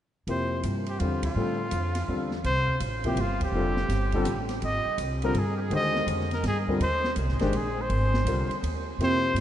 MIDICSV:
0, 0, Header, 1, 7, 480
1, 0, Start_track
1, 0, Tempo, 363636
1, 355, Time_signature, 3, 2, 24, 8
1, 12413, End_track
2, 0, Start_track
2, 0, Title_t, "Trumpet"
2, 0, Program_c, 0, 56
2, 398, Note_on_c, 0, 72, 75
2, 824, Note_off_c, 0, 72, 0
2, 1166, Note_on_c, 0, 67, 58
2, 1275, Note_off_c, 0, 67, 0
2, 1308, Note_on_c, 0, 65, 64
2, 1620, Note_off_c, 0, 65, 0
2, 1642, Note_on_c, 0, 65, 74
2, 3017, Note_off_c, 0, 65, 0
2, 3239, Note_on_c, 0, 72, 98
2, 3681, Note_off_c, 0, 72, 0
2, 4054, Note_on_c, 0, 67, 70
2, 4231, Note_on_c, 0, 65, 77
2, 4251, Note_off_c, 0, 67, 0
2, 4519, Note_off_c, 0, 65, 0
2, 4540, Note_on_c, 0, 67, 77
2, 5905, Note_off_c, 0, 67, 0
2, 6130, Note_on_c, 0, 75, 92
2, 6566, Note_off_c, 0, 75, 0
2, 6925, Note_on_c, 0, 70, 76
2, 7111, Note_on_c, 0, 68, 73
2, 7131, Note_off_c, 0, 70, 0
2, 7321, Note_off_c, 0, 68, 0
2, 7351, Note_on_c, 0, 67, 46
2, 7404, Note_on_c, 0, 68, 63
2, 7424, Note_off_c, 0, 67, 0
2, 7561, Note_off_c, 0, 68, 0
2, 7593, Note_on_c, 0, 75, 96
2, 8018, Note_off_c, 0, 75, 0
2, 8364, Note_on_c, 0, 70, 71
2, 8511, Note_off_c, 0, 70, 0
2, 8548, Note_on_c, 0, 68, 79
2, 8678, Note_off_c, 0, 68, 0
2, 9009, Note_on_c, 0, 72, 90
2, 9446, Note_off_c, 0, 72, 0
2, 9808, Note_on_c, 0, 67, 64
2, 9989, Note_on_c, 0, 68, 71
2, 10008, Note_off_c, 0, 67, 0
2, 10310, Note_on_c, 0, 72, 78
2, 10330, Note_off_c, 0, 68, 0
2, 11417, Note_off_c, 0, 72, 0
2, 11924, Note_on_c, 0, 72, 104
2, 12347, Note_off_c, 0, 72, 0
2, 12413, End_track
3, 0, Start_track
3, 0, Title_t, "Bass clarinet"
3, 0, Program_c, 1, 71
3, 11896, Note_on_c, 1, 60, 78
3, 12332, Note_off_c, 1, 60, 0
3, 12413, End_track
4, 0, Start_track
4, 0, Title_t, "Grand piano"
4, 0, Program_c, 2, 0
4, 369, Note_on_c, 2, 48, 47
4, 370, Note_on_c, 2, 53, 45
4, 378, Note_on_c, 2, 58, 47
4, 383, Note_on_c, 2, 64, 44
4, 384, Note_on_c, 2, 67, 53
4, 1088, Note_off_c, 2, 48, 0
4, 1089, Note_off_c, 2, 53, 0
4, 1093, Note_off_c, 2, 58, 0
4, 1095, Note_off_c, 2, 64, 0
4, 1096, Note_off_c, 2, 67, 0
4, 1336, Note_on_c, 2, 55, 40
4, 1338, Note_on_c, 2, 50, 46
4, 1345, Note_on_c, 2, 65, 40
4, 1350, Note_on_c, 2, 60, 46
4, 1354, Note_on_c, 2, 67, 47
4, 1603, Note_off_c, 2, 55, 0
4, 1604, Note_off_c, 2, 50, 0
4, 1607, Note_off_c, 2, 65, 0
4, 1609, Note_off_c, 2, 60, 0
4, 1611, Note_off_c, 2, 67, 0
4, 1808, Note_on_c, 2, 55, 46
4, 1809, Note_on_c, 2, 50, 45
4, 1811, Note_on_c, 2, 60, 45
4, 1818, Note_on_c, 2, 69, 50
4, 1820, Note_on_c, 2, 65, 46
4, 2078, Note_off_c, 2, 55, 0
4, 2079, Note_off_c, 2, 50, 0
4, 2080, Note_off_c, 2, 60, 0
4, 2083, Note_off_c, 2, 69, 0
4, 2084, Note_off_c, 2, 65, 0
4, 2760, Note_on_c, 2, 50, 47
4, 2760, Note_on_c, 2, 55, 42
4, 2764, Note_on_c, 2, 65, 42
4, 2767, Note_on_c, 2, 60, 45
4, 2774, Note_on_c, 2, 69, 53
4, 3033, Note_off_c, 2, 50, 0
4, 3033, Note_off_c, 2, 55, 0
4, 3035, Note_off_c, 2, 65, 0
4, 3037, Note_off_c, 2, 60, 0
4, 3041, Note_off_c, 2, 69, 0
4, 4023, Note_on_c, 2, 53, 62
4, 4025, Note_on_c, 2, 48, 59
4, 4036, Note_on_c, 2, 58, 51
4, 4036, Note_on_c, 2, 64, 55
4, 4039, Note_on_c, 2, 67, 68
4, 4174, Note_off_c, 2, 53, 0
4, 4175, Note_off_c, 2, 48, 0
4, 4180, Note_off_c, 2, 58, 0
4, 4181, Note_off_c, 2, 64, 0
4, 4182, Note_off_c, 2, 67, 0
4, 4687, Note_on_c, 2, 50, 53
4, 4689, Note_on_c, 2, 55, 53
4, 4694, Note_on_c, 2, 65, 55
4, 4699, Note_on_c, 2, 60, 55
4, 4699, Note_on_c, 2, 69, 55
4, 4956, Note_off_c, 2, 50, 0
4, 4957, Note_off_c, 2, 55, 0
4, 4959, Note_off_c, 2, 65, 0
4, 4962, Note_off_c, 2, 60, 0
4, 4962, Note_off_c, 2, 69, 0
4, 5469, Note_on_c, 2, 50, 65
4, 5473, Note_on_c, 2, 60, 63
4, 5476, Note_on_c, 2, 55, 61
4, 5481, Note_on_c, 2, 65, 57
4, 5485, Note_on_c, 2, 69, 72
4, 5616, Note_off_c, 2, 50, 0
4, 5618, Note_off_c, 2, 60, 0
4, 5620, Note_off_c, 2, 55, 0
4, 5623, Note_off_c, 2, 65, 0
4, 5625, Note_off_c, 2, 69, 0
4, 6911, Note_on_c, 2, 50, 65
4, 6918, Note_on_c, 2, 55, 59
4, 6920, Note_on_c, 2, 60, 63
4, 6926, Note_on_c, 2, 70, 73
4, 6927, Note_on_c, 2, 65, 58
4, 7057, Note_off_c, 2, 50, 0
4, 7061, Note_off_c, 2, 55, 0
4, 7062, Note_off_c, 2, 60, 0
4, 7065, Note_off_c, 2, 70, 0
4, 7066, Note_off_c, 2, 65, 0
4, 7543, Note_on_c, 2, 51, 57
4, 7544, Note_on_c, 2, 56, 48
4, 7550, Note_on_c, 2, 50, 60
4, 7555, Note_on_c, 2, 67, 60
4, 7559, Note_on_c, 2, 72, 62
4, 8273, Note_off_c, 2, 51, 0
4, 8274, Note_off_c, 2, 56, 0
4, 8276, Note_off_c, 2, 50, 0
4, 8279, Note_off_c, 2, 67, 0
4, 8281, Note_off_c, 2, 72, 0
4, 8830, Note_on_c, 2, 50, 58
4, 8830, Note_on_c, 2, 55, 56
4, 8831, Note_on_c, 2, 60, 55
4, 8834, Note_on_c, 2, 65, 50
4, 8842, Note_on_c, 2, 70, 60
4, 8977, Note_off_c, 2, 50, 0
4, 8978, Note_off_c, 2, 55, 0
4, 8978, Note_off_c, 2, 60, 0
4, 8980, Note_off_c, 2, 65, 0
4, 8983, Note_off_c, 2, 70, 0
4, 9777, Note_on_c, 2, 56, 69
4, 9777, Note_on_c, 2, 62, 63
4, 9782, Note_on_c, 2, 51, 65
4, 9787, Note_on_c, 2, 72, 69
4, 9788, Note_on_c, 2, 67, 64
4, 9931, Note_off_c, 2, 62, 0
4, 9932, Note_off_c, 2, 56, 0
4, 9934, Note_off_c, 2, 51, 0
4, 9937, Note_off_c, 2, 67, 0
4, 9937, Note_off_c, 2, 72, 0
4, 10919, Note_on_c, 2, 55, 47
4, 10922, Note_on_c, 2, 50, 47
4, 10923, Note_on_c, 2, 65, 44
4, 10925, Note_on_c, 2, 60, 44
4, 10927, Note_on_c, 2, 70, 51
4, 11194, Note_off_c, 2, 55, 0
4, 11195, Note_off_c, 2, 50, 0
4, 11195, Note_off_c, 2, 65, 0
4, 11196, Note_off_c, 2, 60, 0
4, 11198, Note_off_c, 2, 70, 0
4, 11877, Note_on_c, 2, 48, 55
4, 11885, Note_on_c, 2, 53, 52
4, 11886, Note_on_c, 2, 58, 49
4, 11893, Note_on_c, 2, 64, 44
4, 11895, Note_on_c, 2, 67, 63
4, 12413, Note_off_c, 2, 48, 0
4, 12413, Note_off_c, 2, 53, 0
4, 12413, Note_off_c, 2, 58, 0
4, 12413, Note_off_c, 2, 64, 0
4, 12413, Note_off_c, 2, 67, 0
4, 12413, End_track
5, 0, Start_track
5, 0, Title_t, "Upright bass"
5, 0, Program_c, 3, 32
5, 355, Note_on_c, 3, 41, 67
5, 820, Note_off_c, 3, 41, 0
5, 838, Note_on_c, 3, 43, 75
5, 1301, Note_off_c, 3, 43, 0
5, 1320, Note_on_c, 3, 40, 84
5, 1781, Note_off_c, 3, 40, 0
5, 1791, Note_on_c, 3, 45, 74
5, 2257, Note_off_c, 3, 45, 0
5, 2269, Note_on_c, 3, 41, 84
5, 2735, Note_off_c, 3, 41, 0
5, 2745, Note_on_c, 3, 40, 82
5, 3213, Note_off_c, 3, 40, 0
5, 3218, Note_on_c, 3, 36, 73
5, 3689, Note_off_c, 3, 36, 0
5, 3700, Note_on_c, 3, 33, 72
5, 4159, Note_off_c, 3, 33, 0
5, 4167, Note_on_c, 3, 31, 88
5, 4636, Note_off_c, 3, 31, 0
5, 4644, Note_on_c, 3, 29, 67
5, 5121, Note_off_c, 3, 29, 0
5, 5131, Note_on_c, 3, 31, 79
5, 5605, Note_off_c, 3, 31, 0
5, 5626, Note_on_c, 3, 33, 72
5, 6092, Note_off_c, 3, 33, 0
5, 6103, Note_on_c, 3, 32, 77
5, 6393, Note_off_c, 3, 32, 0
5, 6570, Note_on_c, 3, 36, 76
5, 7032, Note_off_c, 3, 36, 0
5, 7040, Note_on_c, 3, 43, 82
5, 7519, Note_off_c, 3, 43, 0
5, 7530, Note_on_c, 3, 39, 75
5, 7999, Note_off_c, 3, 39, 0
5, 8007, Note_on_c, 3, 41, 80
5, 8483, Note_off_c, 3, 41, 0
5, 8493, Note_on_c, 3, 43, 82
5, 8962, Note_off_c, 3, 43, 0
5, 8970, Note_on_c, 3, 39, 72
5, 9445, Note_off_c, 3, 39, 0
5, 9455, Note_on_c, 3, 36, 78
5, 9620, Note_on_c, 3, 32, 54
5, 9639, Note_off_c, 3, 36, 0
5, 9784, Note_off_c, 3, 32, 0
5, 9793, Note_on_c, 3, 31, 57
5, 9935, Note_off_c, 3, 31, 0
5, 9943, Note_on_c, 3, 34, 85
5, 10412, Note_off_c, 3, 34, 0
5, 10423, Note_on_c, 3, 32, 79
5, 10882, Note_off_c, 3, 32, 0
5, 10890, Note_on_c, 3, 36, 77
5, 11188, Note_off_c, 3, 36, 0
5, 11389, Note_on_c, 3, 39, 76
5, 11849, Note_off_c, 3, 39, 0
5, 11857, Note_on_c, 3, 41, 68
5, 12322, Note_off_c, 3, 41, 0
5, 12330, Note_on_c, 3, 43, 77
5, 12413, Note_off_c, 3, 43, 0
5, 12413, End_track
6, 0, Start_track
6, 0, Title_t, "Muted upright bass strokes"
6, 6409, Note_on_c, 9, 29, 31
6, 6541, Note_off_c, 9, 29, 0
6, 11204, Note_on_c, 9, 29, 29
6, 11336, Note_off_c, 9, 29, 0
6, 12413, End_track
7, 0, Start_track
7, 0, Title_t, "Drums"
7, 362, Note_on_c, 9, 51, 46
7, 494, Note_off_c, 9, 51, 0
7, 837, Note_on_c, 9, 44, 48
7, 837, Note_on_c, 9, 51, 58
7, 969, Note_off_c, 9, 44, 0
7, 969, Note_off_c, 9, 51, 0
7, 1141, Note_on_c, 9, 51, 39
7, 1273, Note_off_c, 9, 51, 0
7, 1317, Note_on_c, 9, 51, 52
7, 1449, Note_off_c, 9, 51, 0
7, 1622, Note_on_c, 9, 51, 66
7, 1623, Note_on_c, 9, 36, 68
7, 1754, Note_off_c, 9, 51, 0
7, 1755, Note_off_c, 9, 36, 0
7, 2259, Note_on_c, 9, 44, 51
7, 2259, Note_on_c, 9, 51, 61
7, 2391, Note_off_c, 9, 44, 0
7, 2391, Note_off_c, 9, 51, 0
7, 2572, Note_on_c, 9, 51, 59
7, 2577, Note_on_c, 9, 38, 29
7, 2704, Note_off_c, 9, 51, 0
7, 2709, Note_off_c, 9, 38, 0
7, 3051, Note_on_c, 9, 38, 32
7, 3183, Note_off_c, 9, 38, 0
7, 3225, Note_on_c, 9, 51, 45
7, 3357, Note_off_c, 9, 51, 0
7, 3537, Note_on_c, 9, 36, 44
7, 3669, Note_off_c, 9, 36, 0
7, 3700, Note_on_c, 9, 44, 47
7, 3700, Note_on_c, 9, 51, 59
7, 3832, Note_off_c, 9, 44, 0
7, 3832, Note_off_c, 9, 51, 0
7, 4012, Note_on_c, 9, 51, 41
7, 4015, Note_on_c, 9, 36, 40
7, 4144, Note_off_c, 9, 51, 0
7, 4147, Note_off_c, 9, 36, 0
7, 4182, Note_on_c, 9, 51, 56
7, 4314, Note_off_c, 9, 51, 0
7, 4497, Note_on_c, 9, 36, 67
7, 4498, Note_on_c, 9, 51, 58
7, 4629, Note_off_c, 9, 36, 0
7, 4630, Note_off_c, 9, 51, 0
7, 4972, Note_on_c, 9, 38, 35
7, 5104, Note_off_c, 9, 38, 0
7, 5142, Note_on_c, 9, 44, 47
7, 5142, Note_on_c, 9, 51, 53
7, 5147, Note_on_c, 9, 38, 33
7, 5274, Note_off_c, 9, 44, 0
7, 5274, Note_off_c, 9, 51, 0
7, 5279, Note_off_c, 9, 38, 0
7, 5442, Note_on_c, 9, 51, 38
7, 5454, Note_on_c, 9, 36, 43
7, 5574, Note_off_c, 9, 51, 0
7, 5586, Note_off_c, 9, 36, 0
7, 5613, Note_on_c, 9, 44, 61
7, 5613, Note_on_c, 9, 51, 57
7, 5745, Note_off_c, 9, 44, 0
7, 5745, Note_off_c, 9, 51, 0
7, 5924, Note_on_c, 9, 51, 43
7, 5929, Note_on_c, 9, 38, 32
7, 6056, Note_off_c, 9, 51, 0
7, 6061, Note_off_c, 9, 38, 0
7, 6096, Note_on_c, 9, 51, 49
7, 6228, Note_off_c, 9, 51, 0
7, 6575, Note_on_c, 9, 44, 55
7, 6575, Note_on_c, 9, 51, 59
7, 6707, Note_off_c, 9, 44, 0
7, 6707, Note_off_c, 9, 51, 0
7, 6890, Note_on_c, 9, 51, 40
7, 7022, Note_off_c, 9, 51, 0
7, 7056, Note_on_c, 9, 51, 54
7, 7188, Note_off_c, 9, 51, 0
7, 7538, Note_on_c, 9, 51, 46
7, 7670, Note_off_c, 9, 51, 0
7, 7860, Note_on_c, 9, 38, 40
7, 7992, Note_off_c, 9, 38, 0
7, 8022, Note_on_c, 9, 44, 45
7, 8022, Note_on_c, 9, 51, 59
7, 8154, Note_off_c, 9, 44, 0
7, 8154, Note_off_c, 9, 51, 0
7, 8192, Note_on_c, 9, 38, 23
7, 8324, Note_off_c, 9, 38, 0
7, 8330, Note_on_c, 9, 51, 37
7, 8352, Note_on_c, 9, 38, 38
7, 8462, Note_off_c, 9, 51, 0
7, 8484, Note_off_c, 9, 38, 0
7, 8496, Note_on_c, 9, 51, 58
7, 8502, Note_on_c, 9, 38, 36
7, 8628, Note_off_c, 9, 51, 0
7, 8634, Note_off_c, 9, 38, 0
7, 8816, Note_on_c, 9, 36, 45
7, 8948, Note_off_c, 9, 36, 0
7, 8984, Note_on_c, 9, 51, 53
7, 9116, Note_off_c, 9, 51, 0
7, 9296, Note_on_c, 9, 38, 43
7, 9428, Note_off_c, 9, 38, 0
7, 9449, Note_on_c, 9, 44, 55
7, 9449, Note_on_c, 9, 51, 56
7, 9581, Note_off_c, 9, 44, 0
7, 9581, Note_off_c, 9, 51, 0
7, 9621, Note_on_c, 9, 38, 27
7, 9753, Note_off_c, 9, 38, 0
7, 9759, Note_on_c, 9, 51, 41
7, 9775, Note_on_c, 9, 38, 39
7, 9891, Note_off_c, 9, 51, 0
7, 9907, Note_off_c, 9, 38, 0
7, 9937, Note_on_c, 9, 51, 54
7, 10069, Note_off_c, 9, 51, 0
7, 10425, Note_on_c, 9, 51, 49
7, 10557, Note_off_c, 9, 51, 0
7, 10743, Note_on_c, 9, 38, 51
7, 10875, Note_off_c, 9, 38, 0
7, 10911, Note_on_c, 9, 44, 47
7, 10911, Note_on_c, 9, 51, 61
7, 11043, Note_off_c, 9, 44, 0
7, 11043, Note_off_c, 9, 51, 0
7, 11230, Note_on_c, 9, 51, 40
7, 11362, Note_off_c, 9, 51, 0
7, 11400, Note_on_c, 9, 51, 58
7, 11532, Note_off_c, 9, 51, 0
7, 11887, Note_on_c, 9, 51, 46
7, 12019, Note_off_c, 9, 51, 0
7, 12358, Note_on_c, 9, 44, 48
7, 12358, Note_on_c, 9, 51, 58
7, 12363, Note_on_c, 9, 38, 35
7, 12413, Note_off_c, 9, 38, 0
7, 12413, Note_off_c, 9, 44, 0
7, 12413, Note_off_c, 9, 51, 0
7, 12413, End_track
0, 0, End_of_file